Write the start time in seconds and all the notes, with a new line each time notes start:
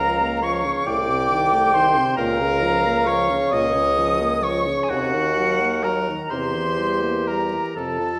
Already playing: C#2 A#4 F5 A#5
0.00 F3
0.21 A#3
0.42 F3 C#5 C#6
0.65 C#3
0.86 C2 A2 D5 G5 D6
1.09 C3
1.31 D#3
1.53 A3
1.74 D#3 C5 C6
1.96 C3
2.16 C#2 A#2 A#4 F5 A#5
2.41 C#3
2.63 F3
2.85 A#3
3.05 F3 C#5 C#6
3.30 C#3
3.50 C#2 A#2 C#5 D#5 D#6
3.75 C#3
3.98 F3
4.20 A#3
4.42 F3 C#5 C#6
4.67 C#3
4.83 G#5
4.89 D#2 C3 F#4 A#4 F#5
5.14 D#3
5.37 F#3
5.60 A#3
5.84 F#3 A#4 A#5
6.08 D#3
6.30 E2 C3 G4 C5 C6
6.56 E3
6.79 G3
7.02 A#3
7.27 G3 A#4 A#5
7.53 E3
7.75 F2 C3 A4 A5
8.01 F3